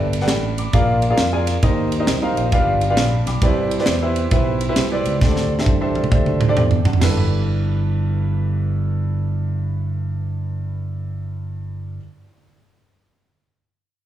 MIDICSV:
0, 0, Header, 1, 4, 480
1, 0, Start_track
1, 0, Key_signature, 1, "major"
1, 0, Tempo, 449102
1, 1736, Time_signature, 4, 2, 24, 8
1, 15025, End_track
2, 0, Start_track
2, 0, Title_t, "Upright piano"
2, 0, Program_c, 0, 0
2, 0, Note_on_c, 0, 43, 80
2, 0, Note_on_c, 0, 67, 88
2, 0, Note_on_c, 0, 69, 78
2, 0, Note_on_c, 0, 71, 83
2, 0, Note_on_c, 0, 74, 77
2, 0, Note_on_c, 0, 76, 100
2, 139, Note_off_c, 0, 67, 0
2, 139, Note_off_c, 0, 71, 0
2, 141, Note_off_c, 0, 69, 0
2, 142, Note_off_c, 0, 76, 0
2, 143, Note_off_c, 0, 74, 0
2, 231, Note_on_c, 0, 67, 88
2, 232, Note_on_c, 0, 71, 78
2, 232, Note_on_c, 0, 74, 82
2, 233, Note_on_c, 0, 78, 95
2, 234, Note_on_c, 0, 69, 79
2, 310, Note_off_c, 0, 78, 0
2, 325, Note_on_c, 0, 83, 72
2, 330, Note_on_c, 0, 79, 61
2, 362, Note_off_c, 0, 67, 0
2, 363, Note_off_c, 0, 69, 0
2, 363, Note_off_c, 0, 71, 0
2, 363, Note_off_c, 0, 74, 0
2, 574, Note_off_c, 0, 43, 0
2, 608, Note_off_c, 0, 83, 0
2, 610, Note_off_c, 0, 79, 0
2, 628, Note_on_c, 0, 86, 68
2, 636, Note_on_c, 0, 83, 54
2, 785, Note_on_c, 0, 65, 95
2, 785, Note_on_c, 0, 68, 82
2, 787, Note_on_c, 0, 70, 88
2, 787, Note_on_c, 0, 74, 87
2, 788, Note_on_c, 0, 46, 78
2, 790, Note_on_c, 0, 77, 103
2, 1074, Note_off_c, 0, 86, 0
2, 1078, Note_off_c, 0, 83, 0
2, 1093, Note_off_c, 0, 65, 0
2, 1093, Note_off_c, 0, 68, 0
2, 1094, Note_off_c, 0, 70, 0
2, 1094, Note_off_c, 0, 74, 0
2, 1095, Note_off_c, 0, 77, 0
2, 1178, Note_on_c, 0, 65, 97
2, 1180, Note_on_c, 0, 68, 86
2, 1180, Note_on_c, 0, 77, 103
2, 1181, Note_on_c, 0, 70, 84
2, 1181, Note_on_c, 0, 74, 83
2, 1313, Note_off_c, 0, 65, 0
2, 1315, Note_off_c, 0, 68, 0
2, 1315, Note_off_c, 0, 70, 0
2, 1315, Note_off_c, 0, 74, 0
2, 1315, Note_off_c, 0, 77, 0
2, 1418, Note_on_c, 0, 65, 86
2, 1418, Note_on_c, 0, 68, 75
2, 1420, Note_on_c, 0, 70, 79
2, 1421, Note_on_c, 0, 74, 76
2, 1422, Note_on_c, 0, 80, 96
2, 1528, Note_off_c, 0, 46, 0
2, 1656, Note_off_c, 0, 65, 0
2, 1656, Note_off_c, 0, 68, 0
2, 1657, Note_off_c, 0, 70, 0
2, 1657, Note_off_c, 0, 74, 0
2, 1657, Note_off_c, 0, 80, 0
2, 1745, Note_on_c, 0, 63, 94
2, 1747, Note_on_c, 0, 67, 85
2, 1747, Note_on_c, 0, 70, 80
2, 1748, Note_on_c, 0, 72, 84
2, 1748, Note_on_c, 0, 75, 102
2, 1752, Note_on_c, 0, 51, 74
2, 2051, Note_off_c, 0, 63, 0
2, 2052, Note_off_c, 0, 67, 0
2, 2052, Note_off_c, 0, 70, 0
2, 2053, Note_off_c, 0, 72, 0
2, 2053, Note_off_c, 0, 75, 0
2, 2135, Note_on_c, 0, 67, 82
2, 2136, Note_on_c, 0, 63, 87
2, 2136, Note_on_c, 0, 72, 81
2, 2139, Note_on_c, 0, 70, 83
2, 2141, Note_on_c, 0, 75, 90
2, 2270, Note_off_c, 0, 67, 0
2, 2271, Note_off_c, 0, 63, 0
2, 2271, Note_off_c, 0, 72, 0
2, 2272, Note_off_c, 0, 70, 0
2, 2273, Note_off_c, 0, 75, 0
2, 2376, Note_on_c, 0, 63, 92
2, 2376, Note_on_c, 0, 70, 80
2, 2379, Note_on_c, 0, 67, 81
2, 2381, Note_on_c, 0, 77, 95
2, 2382, Note_on_c, 0, 72, 83
2, 2489, Note_off_c, 0, 51, 0
2, 2538, Note_on_c, 0, 75, 75
2, 2613, Note_off_c, 0, 63, 0
2, 2613, Note_off_c, 0, 70, 0
2, 2615, Note_off_c, 0, 67, 0
2, 2615, Note_off_c, 0, 77, 0
2, 2616, Note_off_c, 0, 72, 0
2, 2689, Note_off_c, 0, 75, 0
2, 2702, Note_on_c, 0, 43, 83
2, 2703, Note_on_c, 0, 71, 82
2, 2704, Note_on_c, 0, 65, 89
2, 2704, Note_on_c, 0, 67, 82
2, 2704, Note_on_c, 0, 77, 106
2, 2705, Note_on_c, 0, 74, 83
2, 3009, Note_off_c, 0, 71, 0
2, 3010, Note_off_c, 0, 65, 0
2, 3010, Note_off_c, 0, 67, 0
2, 3010, Note_off_c, 0, 74, 0
2, 3066, Note_off_c, 0, 77, 0
2, 3100, Note_on_c, 0, 65, 90
2, 3102, Note_on_c, 0, 77, 100
2, 3103, Note_on_c, 0, 74, 84
2, 3103, Note_on_c, 0, 79, 76
2, 3104, Note_on_c, 0, 67, 84
2, 3105, Note_on_c, 0, 71, 85
2, 3174, Note_off_c, 0, 79, 0
2, 3179, Note_off_c, 0, 77, 0
2, 3186, Note_on_c, 0, 81, 66
2, 3190, Note_on_c, 0, 83, 74
2, 3197, Note_on_c, 0, 77, 54
2, 3231, Note_off_c, 0, 65, 0
2, 3233, Note_off_c, 0, 67, 0
2, 3233, Note_off_c, 0, 74, 0
2, 3234, Note_off_c, 0, 71, 0
2, 3443, Note_off_c, 0, 43, 0
2, 3470, Note_off_c, 0, 83, 0
2, 3474, Note_off_c, 0, 81, 0
2, 3479, Note_off_c, 0, 77, 0
2, 3498, Note_on_c, 0, 86, 73
2, 3501, Note_on_c, 0, 83, 67
2, 3506, Note_on_c, 0, 79, 57
2, 3648, Note_off_c, 0, 86, 0
2, 3665, Note_on_c, 0, 64, 92
2, 3665, Note_on_c, 0, 67, 88
2, 3666, Note_on_c, 0, 71, 84
2, 3666, Note_on_c, 0, 72, 84
2, 3666, Note_on_c, 0, 74, 99
2, 3667, Note_on_c, 0, 48, 74
2, 3947, Note_off_c, 0, 83, 0
2, 3950, Note_off_c, 0, 79, 0
2, 3969, Note_off_c, 0, 64, 0
2, 3969, Note_off_c, 0, 67, 0
2, 3970, Note_off_c, 0, 71, 0
2, 3970, Note_off_c, 0, 72, 0
2, 3970, Note_off_c, 0, 74, 0
2, 4056, Note_on_c, 0, 72, 81
2, 4057, Note_on_c, 0, 64, 87
2, 4058, Note_on_c, 0, 67, 85
2, 4061, Note_on_c, 0, 71, 86
2, 4062, Note_on_c, 0, 74, 97
2, 4189, Note_off_c, 0, 64, 0
2, 4189, Note_off_c, 0, 72, 0
2, 4190, Note_off_c, 0, 67, 0
2, 4191, Note_off_c, 0, 71, 0
2, 4192, Note_off_c, 0, 74, 0
2, 4300, Note_on_c, 0, 72, 87
2, 4301, Note_on_c, 0, 64, 88
2, 4302, Note_on_c, 0, 67, 83
2, 4302, Note_on_c, 0, 71, 80
2, 4304, Note_on_c, 0, 76, 96
2, 4406, Note_off_c, 0, 48, 0
2, 4534, Note_off_c, 0, 64, 0
2, 4534, Note_off_c, 0, 72, 0
2, 4535, Note_off_c, 0, 67, 0
2, 4535, Note_off_c, 0, 71, 0
2, 4536, Note_off_c, 0, 76, 0
2, 4617, Note_on_c, 0, 72, 89
2, 4619, Note_on_c, 0, 71, 86
2, 4620, Note_on_c, 0, 64, 89
2, 4620, Note_on_c, 0, 76, 106
2, 4622, Note_on_c, 0, 67, 86
2, 4925, Note_off_c, 0, 72, 0
2, 4926, Note_off_c, 0, 71, 0
2, 4927, Note_off_c, 0, 64, 0
2, 4927, Note_off_c, 0, 76, 0
2, 4928, Note_off_c, 0, 67, 0
2, 5010, Note_on_c, 0, 64, 91
2, 5014, Note_on_c, 0, 72, 86
2, 5015, Note_on_c, 0, 76, 105
2, 5016, Note_on_c, 0, 71, 86
2, 5017, Note_on_c, 0, 67, 87
2, 5145, Note_off_c, 0, 64, 0
2, 5148, Note_off_c, 0, 72, 0
2, 5148, Note_off_c, 0, 76, 0
2, 5149, Note_off_c, 0, 67, 0
2, 5149, Note_off_c, 0, 71, 0
2, 5253, Note_on_c, 0, 67, 77
2, 5255, Note_on_c, 0, 64, 86
2, 5256, Note_on_c, 0, 72, 79
2, 5258, Note_on_c, 0, 71, 78
2, 5259, Note_on_c, 0, 74, 95
2, 5491, Note_off_c, 0, 64, 0
2, 5491, Note_off_c, 0, 67, 0
2, 5492, Note_off_c, 0, 72, 0
2, 5493, Note_off_c, 0, 71, 0
2, 5493, Note_off_c, 0, 74, 0
2, 5578, Note_on_c, 0, 62, 89
2, 5580, Note_on_c, 0, 72, 81
2, 5581, Note_on_c, 0, 50, 79
2, 5583, Note_on_c, 0, 67, 83
2, 5584, Note_on_c, 0, 69, 88
2, 5586, Note_on_c, 0, 74, 102
2, 5886, Note_off_c, 0, 62, 0
2, 5887, Note_off_c, 0, 72, 0
2, 5888, Note_off_c, 0, 67, 0
2, 5889, Note_off_c, 0, 69, 0
2, 5890, Note_off_c, 0, 74, 0
2, 5978, Note_on_c, 0, 67, 78
2, 5978, Note_on_c, 0, 69, 79
2, 5979, Note_on_c, 0, 62, 89
2, 5980, Note_on_c, 0, 76, 98
2, 5981, Note_on_c, 0, 72, 75
2, 6110, Note_off_c, 0, 67, 0
2, 6110, Note_off_c, 0, 69, 0
2, 6111, Note_off_c, 0, 62, 0
2, 6111, Note_off_c, 0, 76, 0
2, 6112, Note_off_c, 0, 72, 0
2, 6209, Note_on_c, 0, 62, 88
2, 6213, Note_on_c, 0, 72, 84
2, 6214, Note_on_c, 0, 69, 81
2, 6215, Note_on_c, 0, 67, 82
2, 6216, Note_on_c, 0, 76, 98
2, 6324, Note_off_c, 0, 50, 0
2, 6449, Note_off_c, 0, 62, 0
2, 6451, Note_off_c, 0, 69, 0
2, 6451, Note_off_c, 0, 72, 0
2, 6452, Note_off_c, 0, 67, 0
2, 6452, Note_off_c, 0, 76, 0
2, 6531, Note_on_c, 0, 62, 94
2, 6532, Note_on_c, 0, 69, 85
2, 6533, Note_on_c, 0, 76, 98
2, 6534, Note_on_c, 0, 67, 82
2, 6537, Note_on_c, 0, 72, 80
2, 6843, Note_off_c, 0, 62, 0
2, 6844, Note_off_c, 0, 69, 0
2, 6844, Note_off_c, 0, 76, 0
2, 6845, Note_off_c, 0, 67, 0
2, 6846, Note_off_c, 0, 72, 0
2, 6930, Note_on_c, 0, 62, 92
2, 6931, Note_on_c, 0, 72, 82
2, 6932, Note_on_c, 0, 67, 87
2, 6935, Note_on_c, 0, 69, 83
2, 6939, Note_on_c, 0, 74, 102
2, 7025, Note_on_c, 0, 79, 66
2, 7028, Note_on_c, 0, 76, 54
2, 7066, Note_off_c, 0, 62, 0
2, 7067, Note_off_c, 0, 67, 0
2, 7067, Note_off_c, 0, 72, 0
2, 7069, Note_off_c, 0, 69, 0
2, 7071, Note_off_c, 0, 74, 0
2, 7314, Note_off_c, 0, 79, 0
2, 7316, Note_off_c, 0, 76, 0
2, 7333, Note_on_c, 0, 81, 68
2, 7336, Note_on_c, 0, 78, 59
2, 7479, Note_on_c, 0, 64, 83
2, 7494, Note_on_c, 0, 67, 75
2, 7499, Note_on_c, 0, 43, 82
2, 7507, Note_on_c, 0, 69, 76
2, 7524, Note_on_c, 0, 71, 92
2, 7784, Note_off_c, 0, 81, 0
2, 7786, Note_off_c, 0, 78, 0
2, 12771, Note_off_c, 0, 64, 0
2, 12786, Note_off_c, 0, 67, 0
2, 12792, Note_off_c, 0, 43, 0
2, 12799, Note_off_c, 0, 69, 0
2, 12817, Note_off_c, 0, 71, 0
2, 15025, End_track
3, 0, Start_track
3, 0, Title_t, "Fingered electric bass"
3, 0, Program_c, 1, 33
3, 0, Note_on_c, 1, 31, 111
3, 308, Note_off_c, 1, 31, 0
3, 308, Note_on_c, 1, 33, 93
3, 712, Note_off_c, 1, 33, 0
3, 787, Note_on_c, 1, 34, 114
3, 1190, Note_off_c, 1, 34, 0
3, 1272, Note_on_c, 1, 41, 94
3, 1672, Note_off_c, 1, 41, 0
3, 1742, Note_on_c, 1, 39, 108
3, 2220, Note_on_c, 1, 36, 90
3, 2236, Note_off_c, 1, 39, 0
3, 2480, Note_off_c, 1, 36, 0
3, 2536, Note_on_c, 1, 34, 96
3, 2675, Note_off_c, 1, 34, 0
3, 2699, Note_on_c, 1, 31, 104
3, 3181, Note_off_c, 1, 31, 0
3, 3181, Note_on_c, 1, 34, 93
3, 3440, Note_off_c, 1, 34, 0
3, 3493, Note_on_c, 1, 35, 88
3, 3632, Note_off_c, 1, 35, 0
3, 3656, Note_on_c, 1, 36, 110
3, 4061, Note_off_c, 1, 36, 0
3, 4144, Note_on_c, 1, 40, 94
3, 4546, Note_off_c, 1, 40, 0
3, 4615, Note_on_c, 1, 35, 93
3, 5020, Note_off_c, 1, 35, 0
3, 5100, Note_on_c, 1, 36, 98
3, 5360, Note_off_c, 1, 36, 0
3, 5410, Note_on_c, 1, 37, 90
3, 5550, Note_off_c, 1, 37, 0
3, 5575, Note_on_c, 1, 38, 115
3, 5981, Note_off_c, 1, 38, 0
3, 6055, Note_on_c, 1, 36, 94
3, 6461, Note_off_c, 1, 36, 0
3, 6541, Note_on_c, 1, 38, 97
3, 6945, Note_off_c, 1, 38, 0
3, 7023, Note_on_c, 1, 40, 86
3, 7282, Note_off_c, 1, 40, 0
3, 7336, Note_on_c, 1, 42, 87
3, 7474, Note_off_c, 1, 42, 0
3, 7513, Note_on_c, 1, 31, 103
3, 12805, Note_off_c, 1, 31, 0
3, 15025, End_track
4, 0, Start_track
4, 0, Title_t, "Drums"
4, 140, Note_on_c, 9, 53, 68
4, 220, Note_on_c, 9, 38, 33
4, 247, Note_off_c, 9, 53, 0
4, 297, Note_off_c, 9, 38, 0
4, 297, Note_on_c, 9, 38, 113
4, 304, Note_on_c, 9, 53, 80
4, 404, Note_off_c, 9, 38, 0
4, 411, Note_off_c, 9, 53, 0
4, 620, Note_on_c, 9, 53, 64
4, 727, Note_off_c, 9, 53, 0
4, 782, Note_on_c, 9, 53, 68
4, 786, Note_on_c, 9, 36, 114
4, 889, Note_off_c, 9, 53, 0
4, 892, Note_off_c, 9, 36, 0
4, 1091, Note_on_c, 9, 53, 64
4, 1197, Note_off_c, 9, 53, 0
4, 1255, Note_on_c, 9, 53, 78
4, 1256, Note_on_c, 9, 38, 121
4, 1362, Note_off_c, 9, 53, 0
4, 1363, Note_off_c, 9, 38, 0
4, 1565, Note_on_c, 9, 38, 34
4, 1572, Note_on_c, 9, 53, 70
4, 1672, Note_off_c, 9, 38, 0
4, 1679, Note_off_c, 9, 53, 0
4, 1738, Note_on_c, 9, 53, 78
4, 1740, Note_on_c, 9, 36, 119
4, 1845, Note_off_c, 9, 53, 0
4, 1847, Note_off_c, 9, 36, 0
4, 2051, Note_on_c, 9, 53, 67
4, 2158, Note_off_c, 9, 53, 0
4, 2215, Note_on_c, 9, 38, 115
4, 2222, Note_on_c, 9, 53, 85
4, 2322, Note_off_c, 9, 38, 0
4, 2329, Note_off_c, 9, 53, 0
4, 2535, Note_on_c, 9, 53, 60
4, 2642, Note_off_c, 9, 53, 0
4, 2693, Note_on_c, 9, 53, 67
4, 2697, Note_on_c, 9, 36, 118
4, 2800, Note_off_c, 9, 53, 0
4, 2804, Note_off_c, 9, 36, 0
4, 3006, Note_on_c, 9, 53, 62
4, 3113, Note_off_c, 9, 53, 0
4, 3174, Note_on_c, 9, 38, 116
4, 3174, Note_on_c, 9, 53, 74
4, 3281, Note_off_c, 9, 38, 0
4, 3281, Note_off_c, 9, 53, 0
4, 3486, Note_on_c, 9, 38, 34
4, 3493, Note_on_c, 9, 53, 69
4, 3593, Note_off_c, 9, 38, 0
4, 3600, Note_off_c, 9, 53, 0
4, 3651, Note_on_c, 9, 53, 75
4, 3652, Note_on_c, 9, 36, 119
4, 3758, Note_off_c, 9, 53, 0
4, 3759, Note_off_c, 9, 36, 0
4, 3968, Note_on_c, 9, 53, 67
4, 4048, Note_on_c, 9, 38, 35
4, 4075, Note_off_c, 9, 53, 0
4, 4125, Note_off_c, 9, 38, 0
4, 4125, Note_on_c, 9, 38, 116
4, 4132, Note_on_c, 9, 53, 82
4, 4231, Note_off_c, 9, 38, 0
4, 4239, Note_off_c, 9, 53, 0
4, 4445, Note_on_c, 9, 53, 60
4, 4552, Note_off_c, 9, 53, 0
4, 4608, Note_on_c, 9, 53, 70
4, 4611, Note_on_c, 9, 36, 116
4, 4714, Note_off_c, 9, 53, 0
4, 4718, Note_off_c, 9, 36, 0
4, 4924, Note_on_c, 9, 53, 63
4, 5031, Note_off_c, 9, 53, 0
4, 5088, Note_on_c, 9, 53, 82
4, 5089, Note_on_c, 9, 38, 118
4, 5195, Note_off_c, 9, 38, 0
4, 5195, Note_off_c, 9, 53, 0
4, 5403, Note_on_c, 9, 53, 70
4, 5510, Note_off_c, 9, 53, 0
4, 5573, Note_on_c, 9, 36, 125
4, 5574, Note_on_c, 9, 38, 66
4, 5680, Note_off_c, 9, 36, 0
4, 5681, Note_off_c, 9, 38, 0
4, 5732, Note_on_c, 9, 38, 58
4, 5839, Note_off_c, 9, 38, 0
4, 5972, Note_on_c, 9, 38, 63
4, 6053, Note_on_c, 9, 36, 92
4, 6054, Note_on_c, 9, 48, 73
4, 6079, Note_off_c, 9, 38, 0
4, 6160, Note_off_c, 9, 36, 0
4, 6161, Note_off_c, 9, 48, 0
4, 6364, Note_on_c, 9, 48, 85
4, 6452, Note_on_c, 9, 47, 74
4, 6471, Note_off_c, 9, 48, 0
4, 6538, Note_on_c, 9, 36, 119
4, 6559, Note_off_c, 9, 47, 0
4, 6645, Note_off_c, 9, 36, 0
4, 6694, Note_on_c, 9, 47, 80
4, 6801, Note_off_c, 9, 47, 0
4, 6847, Note_on_c, 9, 45, 100
4, 6954, Note_off_c, 9, 45, 0
4, 7018, Note_on_c, 9, 45, 105
4, 7125, Note_off_c, 9, 45, 0
4, 7170, Note_on_c, 9, 43, 91
4, 7276, Note_off_c, 9, 43, 0
4, 7324, Note_on_c, 9, 43, 119
4, 7410, Note_off_c, 9, 43, 0
4, 7410, Note_on_c, 9, 43, 92
4, 7498, Note_off_c, 9, 43, 0
4, 7498, Note_on_c, 9, 38, 98
4, 7498, Note_on_c, 9, 43, 102
4, 7498, Note_on_c, 9, 49, 88
4, 7604, Note_off_c, 9, 38, 0
4, 7604, Note_off_c, 9, 43, 0
4, 7604, Note_off_c, 9, 49, 0
4, 15025, End_track
0, 0, End_of_file